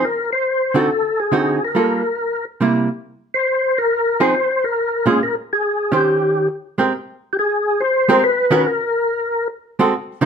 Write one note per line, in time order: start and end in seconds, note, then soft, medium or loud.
0.05 0.30 A#4 medium
0.33 0.77 C5 medium
0.74 0.88 D3 medium
0.74 0.88 C4 soft
0.74 0.89 D#4 medium
0.74 0.89 F#4 medium
0.74 1.20 A4 medium
1.20 1.63 G#4 medium
1.32 1.58 D3 soft
1.32 1.58 C4 soft
1.32 1.58 D#4 medium
1.32 1.58 F#4 medium
1.64 2.45 A#4 medium
1.75 2.01 G3 soft
1.75 2.02 A#3 soft
1.75 2.02 F4 medium
1.75 2.02 A4 medium
2.61 2.87 C3 soft
2.61 2.87 G3 soft
2.61 2.88 A#3 medium
2.61 2.88 E4 soft
3.34 3.78 C5 medium
3.78 4.22 A#4 loud
4.20 4.33 F3 medium
4.20 4.34 C4 medium
4.20 4.34 D#4 medium
4.20 4.34 G#4 medium
4.20 4.65 C5 medium
4.64 5.08 A#4 medium
5.06 5.19 A#2 medium
5.06 5.20 G#3 medium
5.06 5.20 C#4 medium
5.06 5.20 F4 medium
5.06 5.23 G#4 medium
5.23 5.35 A#4 medium
5.53 5.91 G#4 medium
5.92 6.47 D#3 soft
5.92 6.47 C#4 soft
5.92 6.48 G4 medium
5.92 6.48 C5 medium
5.97 6.48 G4 medium
6.78 6.92 G#3 soft
6.78 6.92 C4 medium
6.78 6.92 G4 medium
6.78 6.93 A#4 medium
7.33 7.37 G4 medium
7.39 7.82 G#4 medium
7.80 8.24 C5 loud
8.09 8.21 G#3 medium
8.09 8.22 C4 medium
8.09 8.22 G4 medium
8.09 8.22 A#4 medium
8.24 8.67 B4 loud
8.51 8.64 D#3 medium
8.51 8.64 C#4 medium
8.51 8.64 F#4 medium
8.51 8.65 A#4 medium
8.66 9.48 A#4 medium
9.79 9.93 G#3 medium
9.79 9.93 C4 medium
9.79 9.93 F#4 medium
9.79 9.93 A4 medium
10.21 10.26 C#3 medium
10.21 10.26 F3 medium
10.21 10.26 A#3 medium
10.21 10.26 D#4 medium